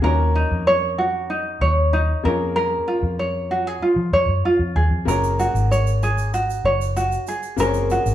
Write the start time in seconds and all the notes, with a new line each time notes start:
Already playing: F#4 G#4 C#5
0.02 D#2 A#3 C#4 D#4 F#4 A#4
0.06 C#5
0.35 D#4
0.51 F2
0.67 C#5
0.98 F#4
1.30 D#4
1.61 D#2 C#5
1.93 D#4
2.23 F2 A#3 C#4 F4 G#4 A#4 C#5
2.56 A#4
2.88 F4
3.03 F2
3.19 C#5
3.51 F#4
3.67 G#4
3.82 F4
3.96 F3
4.13 F2 C#5
4.28 F#2
4.45 F4
4.59 F2
4.75 D#2 G#4
4.90 F2
5.05 F#1 A#3 C#4 F#4 G#4 A#4, shaker
5.09 C#5
5.24 shaker
5.39 F#4, shaker
5.55 G#1, shaker
5.71 C#5, shaker
5.87 shaker
6.03 G#4, shaker
6.18 shaker
6.34 F#4, shaker
6.50 shaker
6.64 F#1 C#5
6.81 shaker
6.96 F#4, shaker
7.12 shaker
7.27 G#4, shaker
7.43 shaker
7.56 F#1 A#3 C#4 F#4 G#4 A#4 C5, shaker
7.67 C#5
7.74 shaker
7.90 F#4, shaker
8.06 G#1, shaker